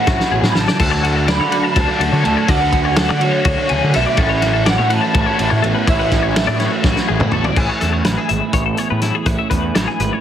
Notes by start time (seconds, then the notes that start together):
Already playing: E3 C#4 E4 F#4 F#5
0.06 A1 A2 E3 A3 C#4 E4 F#4, kick, snare
0.20 snare
0.31 A1 A2 B2 E3 A3 C#4 E4 G#4
0.42 A2, snare
0.50 B5
0.54 A1 C#3 E3 A3 C#4 E4 A4 A5, snare
0.68 D5, snare
0.78 D2 D3 A3 D4 F#4 A4, kick, crash
0.83 A4
0.91 C#5
1.02 A3 D4 F#4, ride
1.16 A4
1.26 D3 A3 D4 F#4 A4 D5, snare, ride
1.30 B5
1.40 D3 C#5
1.50 F#3 A3 D4 F#4 F#5, ride
1.64 A5
1.70 B5
1.74 D2 D3 A3 D4 F#4 A4 A5, kick, snare, ride
1.88 D5
1.98 D2 D3 A3 D4 F#4 A4, ride
2.13 D3 C#5
2.23 D2 A2 D3 A3 D4 F#4 A4 A5, ride
2.37 C#5
2.47 D2 D3 A3 D4 F#4 A4 D5 F#5, kick, ride
2.61 B4
2.71 A3 D4 F#4, kick, ride
2.85 C#5
2.96 D3 A3 D4 F#4 A4 F#5, snare, ride
3.09 D3 D5
3.20 F#3 A3 D4 F#4 C#5, ride
3.24 C#5
3.33 A4
3.44 D2 D3 A3 D4 F#4, kick, ride
3.68 D2 C#3 D3 A3 D4 F#4 G#4, ride
3.84 D3
3.92 B2 D3 A3 D4 F#4 A4, snare, ride
3.96 B1 E5
4.07 D5
4.16 A1 A2 E3 A3 C#4 E4 A4, kick, ride
4.21 F#4
4.29 C#5
4.41 A3 C#4 E4 F#4, snare, ride
4.53 E4 A4
4.64 A2 E3 A3 C#4 E4 D5, snare, ride
4.70 F#4 F#5
4.78 A2 C#5
4.89 A3 C#4 E4 F#5, ride
4.93 E3 C#4 A5
5.01 E4 A5
5.13 A1 E3 A3 C#4 E4 F#4 A4 A5, kick, ride
5.26 C#5
5.38 A1 A2 E3 A3 C#4 E4 A4, ride
5.42 E4
5.50 A2 C#5
5.62 A1 E2 E3 A3 C#4 E4 F#4 A4, ride
5.74 B4
5.86 A1 A2 E3 A3 C#4 E4 C#5 E5, kick, ride
5.90 E4 F#4
5.99 B4
6.11 A3 C#4 E4, kick, snare, ride
6.23 C#5
6.34 A2 E3 A3 C#4 E4 A4, snare, ride
6.47 A2 F#4 D5
6.59 E3 A3 C#4 E4 C#5, snare, ride
6.72 A4
6.83 A1 E3 A3 C#4 E4 F#4, kick, snare
6.96 snare
7.07 A1 A2 E3 A3 C#4 E4 G#4
7.20 A2 E4, mid tom
7.31 A1 E2 E3 A3 C#4 E4 A4, mid tom
7.35 F#4
7.44 D5, floor tom
7.56 A1 A2 C#4 E4 G#4, kick, crash
7.69 C#5
7.81 E2 A4, snare, closed hi-hat
7.93 C#5
8.05 A1 E3 C#4 B4, snare, closed hi-hat
8.18 E4 G#4
8.29 G#1 G#4 E5, closed hi-hat
8.53 A1 E4 C#5, kick, closed hi-hat
8.66 A4
8.77 E2 G#4 C#5, closed hi-hat
8.90 A2 B4
9.02 E4, snare, closed hi-hat
9.15 G#4
9.26 A1 A2 C#4 E4 G#4 B4, kick, closed hi-hat
9.39 E5
9.50 E2 B4, kick, closed hi-hat
9.75 A1 E3 E4 C#5, snare, closed hi-hat
9.88 G#4
10.00 G#1 G#4 B4, closed hi-hat
10.13 C#5